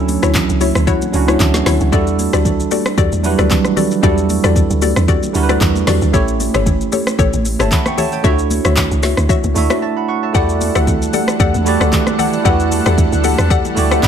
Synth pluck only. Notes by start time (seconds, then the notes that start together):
Already playing: E4 F#4 C#5
0.23 E4 F#4 C#5
0.61 E4 F#4 C#5
0.87 E4 F#4 C#5
1.28 E4 F#4 C#5
1.66 E4 F#4 C#5
1.92 F#4 G4 A4 D5
2.33 F#4 G4 A4 D5
2.71 F#4 G4 A4 D5
2.98 F#4 G4 A4 D5
3.38 F#4 G4 A4 D5
3.77 F#4 G4 A4 D5
4.03 F#4 G4 A4 D5
4.44 F#4 G4 A4 D5
4.82 F#4 G4 A4 D5
5.08 F#4 G4 A4 D5
5.49 F#4 G4 A4 D5
5.87 F#4 G4 A4 D5
6.13 G4 A4 C#5
6.54 G4 A4 C#5
6.92 G4 A4 C#5
7.19 G4 A4 C#5
7.59 G4 A4 C#5
7.98 G4 A4 C#5
8.24 F#4 C#5 E5
8.65 F#4 C#5 E5
9.03 F#4 C#5 E5
9.29 F#4 C#5 E5
9.70 F#4 C#5 E5
10.34 G4 A4 D5 F#5
10.75 G4 A4 D5 F#5
11.13 G4 A4 D5 F#5
11.40 G4 A4 D5 F#5
11.80 G4 A4 D5 F#5
12.19 G4 A4 D5 F#5
12.45 G4 A4 D5 F#5
12.86 G4 A4 D5 F#5
13.24 G4 A4 D5 F#5
13.50 G4 A4 D5 F#5
13.91 G4 A4 D5 F#5